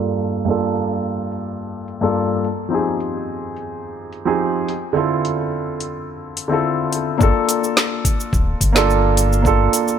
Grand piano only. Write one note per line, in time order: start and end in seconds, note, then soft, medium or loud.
0.00 0.45 G2 medium
0.00 0.46 A#3 medium
0.00 0.48 D4 medium
0.00 0.50 F4 medium
0.00 0.50 A4 medium
0.45 1.98 G2 medium
0.45 1.98 A#3 medium
0.45 1.99 D4 medium
0.50 2.00 F4 medium
0.50 2.00 A4 medium
2.01 2.42 G2 medium
2.01 2.42 A#3 medium
2.01 2.43 D4 medium
2.01 2.43 F4 medium
2.01 2.43 A4 medium
2.69 4.22 F3 medium
2.69 4.22 C4 medium
2.69 4.23 D#4 medium
2.73 4.24 G4 medium
2.73 4.25 G#4 medium
4.25 4.66 F3 medium
4.25 4.66 C4 medium
4.25 4.67 D#4 medium
4.25 4.67 G4 medium
4.25 4.67 G#4 medium
4.93 6.46 D3 medium
4.93 6.46 C4 medium
4.93 6.47 E4 medium
4.93 6.48 F4 medium
4.98 6.49 A4 medium
6.48 7.16 D3 medium
6.48 7.17 C4 medium
6.48 7.18 E4 medium
6.52 7.18 F4 medium
6.52 7.19 A4 medium
7.18 8.71 A#3 medium
7.18 8.71 D4 medium
7.18 8.72 F4 medium
7.23 8.73 A4 loud
8.73 9.41 A#3 medium
8.73 9.42 D4 medium
8.73 9.42 F4 medium
8.78 9.43 A4 loud
9.42 9.99 A#3 medium
9.42 9.99 D4 medium
9.42 9.99 F4 medium
9.47 9.99 A4 loud